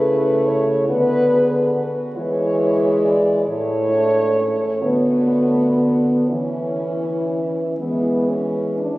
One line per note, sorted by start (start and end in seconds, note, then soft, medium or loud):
0.00 0.91 C#3 medium
0.00 0.88 A3 medium
0.00 0.86 E4 medium
0.00 0.48 B4 loud
0.47 0.88 C#5 medium
0.89 1.99 D3 medium
0.89 1.86 B3 medium
0.89 1.33 F#4 medium
0.89 1.86 B4 loud
1.32 1.73 G#4 medium
1.73 2.18 F#4 medium
2.15 3.44 E3 medium
2.15 3.42 G#3 medium
2.15 3.28 E4 medium
2.15 3.04 C#5 loud
3.02 3.47 D5 medium
3.45 4.51 A2 medium
3.45 4.84 A3 medium
3.45 3.90 E4 medium
3.45 4.80 C#5 loud
3.91 4.36 D4 medium
4.36 4.83 C#4 medium
4.81 6.25 D3 medium
4.81 5.31 B3 medium
4.81 6.28 B3 medium
4.81 6.26 F#4 medium
5.30 5.79 A3 medium
5.78 6.30 B3 medium
6.28 7.76 E3 medium
6.28 7.66 C#4 medium
6.28 7.46 C#4 medium
6.28 8.75 E4 medium
7.78 8.90 E3 medium
7.78 8.88 G#3 soft
7.78 8.30 B3 medium
8.29 8.79 C#4 medium
8.79 8.98 D4 medium